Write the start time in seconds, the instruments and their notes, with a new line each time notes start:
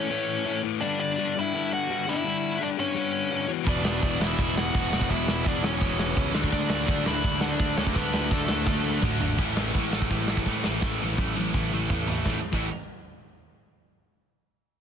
Already playing: lead electric guitar C#4 C#5
0.09 distorted electric guitar A2 E3 A3
0.45 distorted electric guitar A2 E3 A3
0.63 distorted electric guitar A2 E3 A3
0.80 distorted electric guitar G2 D3 G3, lead electric guitar D4 D5
1.00 lead electric guitar D4 D5
1.18 distorted electric guitar G2 D3 G3
1.36 distorted electric guitar G2 D3 G3, lead electric guitar E4
1.41 lead electric guitar E5
1.54 distorted electric guitar G2 D3 G3
1.73 lead electric guitar F#4 F#5
1.89 distorted electric guitar G2 D3 G3
2.07 distorted electric guitar G2 D3 G3, lead electric guitar E4 E5
2.24 distorted electric guitar G2 D3 G3
2.60 distorted electric guitar G2 D3 G3, lead electric guitar D4 D5
2.77 distorted electric guitar G2 D3 G3, lead electric guitar C#4 C#5
2.94 distorted electric guitar G2 D3 G3
3.31 distorted electric guitar G2 D3 G3
3.48 distorted electric guitar E2 B2 E3
3.65 picked electric bass E1, distorted electric guitar E2 B2 E3 G#3 B3 E4 G#4, lead electric guitar D4, kick, crash
3.69 lead electric guitar D5
3.85 picked electric bass E1, lead electric guitar D4 D5, snare
4.03 picked electric bass E1, distorted electric guitar E2 B2 E3, kick, crash
4.20 picked electric bass E1, distorted electric guitar E2 B2 E3, lead electric guitar E4 E5, snare
4.37 picked electric bass E1, distorted electric guitar E2 B2 E3 G#3 B3 E4, kick, crash
4.42 distorted electric guitar G#4
4.57 lead electric guitar F#4 F#5, snare
4.75 picked electric bass E1, distorted electric guitar E2 B2 E3, kick, crash
4.90 picked electric bass E1, distorted electric guitar E2 B2 E3, snare
5.01 kick
5.09 picked electric bass E1, distorted electric guitar E2 B2 E3 G#3 B3, lead electric guitar E4 E5, kick, crash
5.13 distorted electric guitar E4 G#4
5.28 picked electric bass E1, snare
5.43 picked electric bass E1, distorted electric guitar E2 B2 E3, kick, crash
5.48 lead electric guitar D4 D5
5.62 picked electric bass E1, distorted electric guitar E2 B2 E3, lead electric guitar C#4 C#5, snare
5.79 picked electric bass E1, distorted electric guitar E2 B2 E3 G#3 B3 E4, kick, crash
5.84 distorted electric guitar G#4
5.99 snare
6.16 picked electric bass C#2, distorted electric guitar E2 B2 E3, kick, crash
6.32 picked electric bass D2, distorted electric guitar D3 A3 D4 F#4, snare
6.36 distorted electric guitar A4
6.44 kick
6.50 picked electric bass D2, distorted electric guitar D3 A3 D4, lead electric guitar D4 D5, kick, crash
6.70 picked electric bass D2, lead electric guitar D4 D5, snare
6.87 picked electric bass D2, distorted electric guitar D3 A3 D4, kick, crash
7.04 picked electric bass D2, distorted electric guitar D3 A3 D4 F#4 A4, lead electric guitar E4 E5, snare
7.08 distorted electric guitar D3
7.23 picked electric bass D2, distorted electric guitar D3 A3 D4, kick, crash
7.41 lead electric guitar F#4 F#5, snare
7.48 lead electric guitar D4 D5
7.59 picked electric bass D2, distorted electric guitar D3 A3 D4, kick, crash
7.76 picked electric bass D2, distorted electric guitar D3 A3 D4 F#4 A4, lead electric guitar C#4 C#5, snare
7.87 kick
7.94 picked electric bass D2, distorted electric guitar D3 A3 D4, lead electric guitar B3 B4, kick, crash
8.14 picked electric bass D2, snare
8.30 picked electric bass D2, distorted electric guitar D3 A3 D4, lead electric guitar A3 A4, kick, crash
8.48 picked electric bass D2, distorted electric guitar D3 A3 D4 F#4 A4, snare
8.52 distorted electric guitar D3
8.66 picked electric bass D2, distorted electric guitar D3 A3 D4, kick, snare
9.02 picked electric bass D2, distorted electric guitar D3 A3 D4, kick, mid tom
9.20 picked electric bass G#1, distorted electric guitar D3 A3 D4, floor tom
9.38 picked electric bass A1, distorted electric guitar A2 E3 A3, kick, crash
9.57 distorted electric guitar A2 E3 A3, snare
9.75 picked electric bass A1, distorted electric guitar A2 E3 A3, kick, open hi-hat
9.93 distorted electric guitar A2 E3 A3, snare
10.02 kick
10.11 picked electric bass A1, distorted electric guitar A2 E3 A3, kick, open hi-hat
10.28 distorted electric guitar A2 E3 A3, snare
10.37 kick
10.45 picked electric bass A2, distorted electric guitar A2 E3 A3, kick, open hi-hat
10.64 picked electric bass A1, distorted electric guitar A2 E3 A3, snare
10.81 picked electric bass A1, distorted electric guitar A2 E3 A3, kick, snare
11.01 picked electric bass A1, distorted electric guitar A2 E3 A3
11.17 picked electric bass A1, distorted electric guitar A2 E3 A3, kick, high tom
11.22 distorted electric guitar E3
11.36 picked electric bass A1, distorted electric guitar A2 E3 A3, high tom
11.54 picked electric bass A1, distorted electric guitar A2 E3 A3, kick, mid tom
11.72 picked electric bass A1, distorted electric guitar A2 E3 A3
11.90 picked electric bass A1, distorted electric guitar A2 E3 A3, kick, floor tom
12.08 distorted electric guitar A2 E3 A3, floor tom
12.26 picked electric bass A1, distorted electric guitar A2 E3 A3, kick, snare
12.52 picked electric bass A1, distorted electric guitar A2 E3 A3, kick, crash